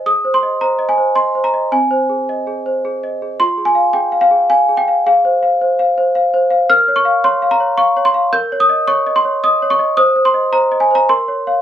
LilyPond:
\new Staff \with { instrumentName = "Celesta" } { \time 3/4 \key aes \major \tempo 4 = 108 << { ees'''8 c'''8 bes''8 aes''8 c'''8 bes''8 | aes''2~ aes''8 r8 | c'''8 aes''8 g''8 f''8 aes''8 g''8 | f''2~ f''8 r8 |
f'''8 des'''8 c'''8 bes''8 des'''8 c'''8 | g'''8 ees'''8 des'''8 c'''8 ees'''8 des'''8 | ees'''8 c'''8 bes''8 aes''16 bes''16 c'''4 | } \\ { \tuplet 3/2 { aes'8 c''8 ees''8 c''8 ees''8 c''8 ees''8 c''8 ees''8 } | \tuplet 3/2 { c'8 c''8 aes'8 ees''8 aes'8 c''8 aes'8 ees''8 aes'8 } | \tuplet 3/2 { f'8 aes'8 f''8 aes'8 f''8 aes'8 f''8 aes'8 f''8 } | \tuplet 3/2 { aes'8 c''8 f''8 c''8 f''8 c''8 f''8 c''8 f''8 } |
\tuplet 3/2 { bes'8 des''8 f''8 des''8 f''8 des''8 f''8 des''8 f''8 } | \tuplet 3/2 { bes'8 des''8 ees''8 des''8 ees''8 des''8 ees''8 des''8 ees''8 } | \tuplet 3/2 { c''8 c''8 ees''8 c''8 ees''8 c''8 bes'8 des''8 <des'' f''>8 } | } >> }